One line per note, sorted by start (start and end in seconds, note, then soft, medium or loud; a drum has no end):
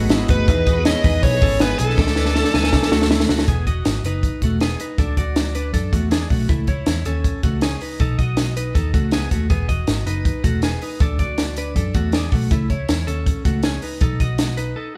0.00 0.24 G#1 medium
0.00 0.10 F#3 medium
0.00 0.11 A3 medium
0.00 0.09 B3 medium
0.00 0.11 B3 medium
0.00 0.10 D#4 medium
0.00 0.11 D#4 medium
0.00 0.10 F#4 medium
0.00 0.11 F#4 medium
0.00 0.11 G#4 medium
0.00 0.11 G#4 loud
0.00 1.95 G#4 medium
0.00 1.95 D#5 medium
0.00 0.45 F#5 medium
0.00 1.95 B5 medium
0.09 0.48 F#3 medium
0.09 0.30 G#3 medium
0.09 0.38 B3 loud
0.09 0.48 B3 medium
0.09 0.39 D#4 medium
0.09 0.48 D#4 medium
0.09 0.30 E4 medium
0.09 0.39 F#4 medium
0.09 0.39 G#4 loud
0.09 0.49 G#4 medium
0.09 snare loud
0.09 hi-hat pedal medium
0.09 open hi-hat medium
0.28 0.45 F#1 medium
0.28 0.49 A3 soft
0.28 0.49 F#4 medium
0.28 0.82 B4 loud
0.28 kick loud
0.28 hi-hat pedal medium
0.28 open hi-hat medium
0.47 0.93 E2 loud
0.47 0.77 E3 medium
0.47 0.76 B3 medium
0.47 0.77 B3 medium
0.47 0.67 D#4 medium
0.47 0.77 D#4 medium
0.47 0.77 E4 medium
0.47 0.77 G#4 medium
0.47 0.75 G#4 medium
0.47 0.67 B4 medium
0.47 3.44 G#5 medium
0.47 kick loud
0.47 hi-hat pedal medium
0.47 open hi-hat medium
0.66 0.86 F#4 medium
0.66 0.86 D#5 medium
0.66 kick medium
0.66 hi-hat pedal medium
0.66 open hi-hat medium
0.76 1.04 B3 soft
0.76 1.04 D#4 medium
0.76 1.04 G#4 medium
0.85 1.14 B3 medium
0.85 1.14 D#4 medium
0.85 1.14 E4 medium
0.85 1.05 E4 medium
0.85 1.15 G#4 medium
0.85 1.04 C#5 medium
0.85 1.23 D#5 loud
0.85 snare loud
0.85 hi-hat pedal medium
0.85 open hi-hat loud
1.04 1.20 E2 medium
1.04 1.32 E3 medium
1.04 1.33 B3 medium
1.04 1.33 D#4 medium
1.04 1.40 D#4 medium
1.04 1.32 G#4 medium
1.04 1.40 B4 medium
1.04 kick loud
1.04 hi-hat pedal medium
1.04 open hi-hat medium
1.22 1.39 B1 loud
1.22 1.51 B3 medium
1.22 1.52 D#4 medium
1.22 1.52 E4 medium
1.22 1.52 G#4 loud
1.22 1.62 C#5 loud
1.22 kick medium
1.22 hi-hat pedal medium
1.22 open hi-hat loud
1.33 1.61 B3 soft
1.33 1.62 D#4 medium
1.33 1.61 G#4 medium
1.42 1.74 G#1 loud
1.42 1.61 C#4 medium
1.42 1.61 A4 medium
1.42 kick loud
1.42 hi-hat pedal medium
1.42 open hi-hat medium
1.59 1.99 E3 medium
1.59 1.89 B3 medium
1.59 1.80 B3 medium
1.59 1.98 B3 medium
1.59 1.89 D#4 medium
1.59 1.99 D#4 medium
1.59 1.89 E4 medium
1.59 1.79 G#4 medium
1.59 1.90 G#4 medium
1.59 1.99 G#4 medium
1.59 1.78 B4 loud
1.59 snare loud
1.59 hi-hat pedal medium
1.59 open hi-hat medium
1.79 1.96 B1 medium
1.79 1.99 B3 soft
1.79 1.99 G#4 medium
1.79 3.07 A4 medium
1.79 hi-hat pedal medium
1.79 open hi-hat medium
1.97 2.42 D2 loud
1.97 2.26 D3 medium
1.97 2.27 E3 medium
1.97 2.27 A3 medium
1.97 2.27 D4 medium
1.97 2.26 D4 medium
1.97 2.17 D4 medium
1.97 2.27 E4 medium
1.97 3.46 A4 medium
1.97 2.17 A4 loud
1.97 2.25 A4 medium
1.97 2.28 A4 medium
1.97 3.46 D5 medium
1.97 3.47 D6 medium
1.97 kick loud
1.97 snare medium
2.07 snare medium
2.16 2.35 D4 medium
2.16 2.36 B4 medium
2.16 snare medium
2.26 2.54 A3 medium
2.26 2.55 D4 medium
2.26 2.54 A4 medium
2.26 snare medium
2.35 2.64 A3 medium
2.35 2.64 D4 medium
2.35 2.54 D4 medium
2.35 2.64 E4 medium
2.35 2.54 A4 medium
2.35 2.65 A4 medium
2.35 snare medium
2.45 snare medium
2.54 2.74 D2 loud
2.54 2.83 E3 medium
2.54 2.83 A3 medium
2.54 2.90 B3 medium
2.54 2.82 D4 medium
2.54 2.81 A4 medium
2.54 2.90 G#5 medium
2.54 snare medium
2.64 snare medium
2.72 2.89 D3 loud
2.72 3.01 A3 medium
2.72 3.01 D4 medium
2.72 3.02 E4 medium
2.72 3.02 A4 loud
2.72 kick medium
2.72 snare medium
2.82 3.10 A3 medium
2.82 3.10 D4 medium
2.82 3.10 A4 medium
2.82 snare medium
2.92 3.24 D2 loud
2.92 3.10 A3 medium
2.92 3.10 F#4 medium
2.92 snare loud
3.02 snare medium
3.10 3.99 E3 medium
3.10 3.39 A3 loud
3.10 3.48 A3 medium
3.10 3.30 A3 medium
3.10 3.39 D4 medium
3.10 3.49 D4 medium
3.10 3.29 E4 medium
3.10 3.39 E4 medium
3.10 3.40 A4 loud
3.10 3.49 A4 medium
3.10 snare loud
3.20 snare medium
3.29 3.45 D2 medium
3.29 3.49 A3 soft
3.29 3.48 F#4 medium
3.29 snare loud
3.39 snare loud
3.48 3.80 E1 loud
3.48 3.67 B3 medium
3.48 3.67 G#4 medium
3.48 kick loud
3.48 closed hi-hat medium
3.67 4.03 F#4 medium
3.67 4.02 D#5 medium
3.67 kick medium
3.67 closed hi-hat medium
3.85 4.02 G#1 medium
3.85 snare loud
3.85 closed hi-hat medium
4.04 4.28 F#1 medium
4.04 4.41 D#4 medium
4.04 4.40 B4 medium
4.04 closed hi-hat medium
4.23 kick medium
4.23 closed hi-hat medium
4.42 4.74 E1 medium
4.42 4.62 A3 medium
4.42 4.61 F#4 medium
4.42 kick medium
4.42 closed hi-hat medium
4.60 4.80 B3 medium
4.60 4.80 G#4 medium
4.60 snare medium
4.60 closed hi-hat medium
4.80 4.99 D#4 soft
4.80 4.99 B4 soft
4.80 closed hi-hat medium
4.98 5.14 D2 loud
4.98 5.18 D4 medium
4.98 5.18 A4 medium
4.98 kick loud
4.98 closed hi-hat medium
5.17 5.71 D2 medium
5.17 5.53 F#4 medium
5.17 5.53 D5 medium
5.17 kick medium
5.17 closed hi-hat medium
5.36 snare loud
5.36 closed hi-hat medium
5.55 5.73 D4 medium
5.55 5.73 B4 medium
5.55 closed hi-hat medium
5.73 5.90 F#2 medium
5.73 5.93 D4 medium
5.73 5.93 A4 medium
5.73 kick medium
5.73 closed hi-hat medium
5.93 6.25 E2 medium
5.93 6.12 A3 medium
5.93 6.11 F#4 medium
5.93 kick medium
5.93 closed hi-hat medium
6.11 6.31 D4 medium
6.11 6.30 G#4 medium
6.11 snare medium
6.11 closed hi-hat medium
6.30 6.46 B1 medium
6.30 6.48 A3 soft
6.30 6.49 F#4 medium
6.30 kick medium
6.30 open hi-hat medium
6.49 6.81 C#2 medium
6.49 6.68 A3 medium
6.49 6.68 E4 medium
6.49 kick loud
6.49 closed hi-hat medium
6.67 7.04 E4 medium
6.67 7.04 C#5 medium
6.67 kick medium
6.67 closed hi-hat medium
6.86 7.03 E2 medium
6.86 snare loud
6.86 closed hi-hat medium
7.05 7.29 D#2 medium
7.05 7.42 C#4 medium
7.05 7.41 A4 medium
7.05 closed hi-hat medium
7.24 kick medium
7.24 closed hi-hat medium
7.43 7.75 C#2 medium
7.43 7.63 A3 medium
7.43 7.62 F#4 medium
7.43 kick medium
7.43 closed hi-hat medium
7.61 7.82 C#4 medium
7.61 7.81 G#4 medium
7.61 snare loud
7.61 closed hi-hat medium
7.81 8.00 D#4 soft
7.81 8.00 B4 medium
7.81 open hi-hat medium
8.00 8.16 B1 loud
8.00 8.19 D#4 medium
8.00 8.19 A4 medium
8.00 kick medium
8.00 closed hi-hat medium
8.18 8.72 B1 medium
8.18 8.55 F#4 medium
8.18 8.54 D#5 medium
8.18 kick medium
8.18 closed hi-hat medium
8.37 snare loud
8.37 closed hi-hat medium
8.57 8.74 D#4 medium
8.57 8.75 B4 medium
8.57 closed hi-hat medium
8.75 8.91 D#2 medium
8.75 8.94 D#4 medium
8.75 8.94 A4 medium
8.75 kick medium
8.75 closed hi-hat medium
8.94 9.26 C#2 medium
8.94 9.13 A3 medium
8.94 9.13 F#4 medium
8.94 kick medium
8.94 closed hi-hat medium
9.11 9.32 B3 medium
9.11 9.31 G#4 medium
9.11 snare loud
9.11 closed hi-hat medium
9.31 9.47 D#2 medium
9.31 9.51 A3 soft
9.31 9.50 F#4 medium
9.31 kick medium
9.31 closed hi-hat medium
9.50 9.82 E1 loud
9.50 9.69 B3 medium
9.50 9.69 G#4 medium
9.50 kick medium
9.50 closed hi-hat medium
9.69 10.05 F#4 medium
9.69 10.04 D#5 medium
9.69 kick medium
9.69 closed hi-hat medium
9.87 10.04 G#1 medium
9.87 snare medium
9.87 closed hi-hat medium
10.06 10.30 F#1 medium
10.06 10.42 D#4 medium
10.06 10.42 B4 medium
10.06 closed hi-hat medium
10.25 kick medium
10.25 closed hi-hat medium
10.44 10.76 E1 medium
10.44 10.64 A3 medium
10.44 10.63 F#4 medium
10.44 kick medium
10.44 closed hi-hat medium
10.62 10.82 B3 medium
10.62 10.82 G#4 medium
10.62 snare medium
10.62 closed hi-hat medium
10.82 11.01 D#4 soft
10.82 11.01 B4 soft
10.82 open hi-hat medium
11.00 11.17 D2 loud
11.00 11.20 D4 medium
11.00 11.20 A4 medium
11.00 kick loud
11.00 closed hi-hat medium
11.19 11.73 D2 medium
11.19 11.56 F#4 medium
11.19 11.55 D5 medium
11.19 kick medium
11.19 closed hi-hat medium
11.38 snare medium
11.38 closed hi-hat medium
11.56 11.76 D4 medium
11.56 11.76 B4 medium
11.56 closed hi-hat medium
11.76 11.92 F#2 medium
11.76 11.95 D4 medium
11.76 11.95 A4 medium
11.76 kick medium
11.76 closed hi-hat medium
11.94 12.27 E2 medium
11.94 12.14 A3 medium
11.94 12.14 F#4 medium
11.94 kick medium
11.94 closed hi-hat medium
12.12 12.33 D4 medium
12.12 12.32 G#4 medium
12.12 snare medium
12.12 closed hi-hat medium
12.32 12.48 B1 medium
12.32 12.51 A3 soft
12.32 12.51 F#4 medium
12.32 kick medium
12.32 open hi-hat medium
12.51 12.83 C#2 medium
12.51 12.71 A3 medium
12.51 12.69 E4 medium
12.51 kick medium
12.51 closed hi-hat medium
12.70 13.06 E4 soft
12.70 13.05 C#5 medium
12.70 kick medium
12.70 closed hi-hat medium
12.89 13.05 E2 medium
12.89 snare loud
12.89 closed hi-hat medium
13.07 13.32 D#2 medium
13.07 13.43 C#4 medium
13.07 13.43 A4 medium
13.07 closed hi-hat medium
13.26 kick medium
13.26 closed hi-hat medium
13.45 13.77 C#2 medium
13.45 13.65 A3 medium
13.45 13.64 F#4 medium
13.45 kick medium
13.45 closed hi-hat medium
13.63 13.83 C#4 medium
13.63 13.83 G#4 medium
13.63 snare loud
13.63 closed hi-hat medium
13.82 14.01 D#4 soft
13.82 14.02 B4 soft
13.82 open hi-hat medium
14.01 14.17 B1 loud
14.01 14.21 D#4 medium
14.01 14.21 A4 medium
14.01 kick loud
14.01 closed hi-hat medium
14.20 14.74 B1 medium
14.20 14.56 F#4 medium
14.20 14.56 D#5 medium
14.20 kick medium
14.20 closed hi-hat medium
14.38 snare loud
14.38 closed hi-hat medium
14.57 14.76 D#4 medium
14.57 14.77 B4 medium
14.57 closed hi-hat medium
14.76 14.96 D#4 medium
14.76 14.95 A4 medium